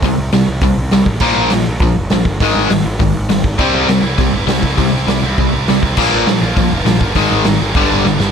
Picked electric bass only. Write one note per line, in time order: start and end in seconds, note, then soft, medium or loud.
0.02 0.14 C2 loud
0.18 0.30 C2 loud
0.33 0.44 C2 medium
0.48 0.59 C2 medium
0.61 0.73 C2 loud
0.78 0.89 C2 medium
0.93 1.04 C2 medium
1.05 1.17 A1 medium
1.20 1.32 A#1 medium
1.37 1.48 A#1 medium
1.53 1.64 A#1 medium
1.68 1.79 A#1 medium
1.80 1.92 A#1 loud
1.97 2.08 F1 medium
2.12 2.23 A#1 medium
2.25 2.36 G1 medium
2.40 2.52 G#1 loud
2.55 2.67 G#1 loud
2.70 2.81 G#1 medium
2.85 2.96 G#1 medium
3.00 3.11 G#1 loud
3.14 3.26 G#1 medium
3.30 3.41 G#1 medium
3.43 3.55 G#1 medium
3.59 3.70 C2 loud
3.74 3.85 C2 medium
3.88 4.00 C2 medium
4.02 4.15 C2 medium
4.18 4.30 C2 loud
4.32 4.44 G1 medium
4.46 4.59 C2 medium
4.62 4.74 C2 medium
4.78 4.90 C2 loud
4.92 5.04 C2 medium
5.08 5.19 C2 medium
5.23 5.34 C2 medium
5.38 5.49 C2 loud
5.54 5.65 C2 medium
5.68 5.80 C2 medium
5.82 5.94 C2 medium
5.96 6.08 A#1 loud
6.14 6.25 A#1 medium
6.27 6.38 A#1 medium
6.42 6.53 A#1 loud
6.56 6.68 A#1 loud
6.72 6.83 F1 medium
6.87 6.99 A#1 medium
7.00 7.12 G1 medium
7.15 7.27 G#1 loud
7.31 7.43 G#1 medium
7.46 7.58 G#1 medium
7.61 7.72 G#1 loud
7.74 7.86 G1 loud
7.90 8.02 G1 loud
8.05 8.17 G1 loud
8.20 8.31 G1 medium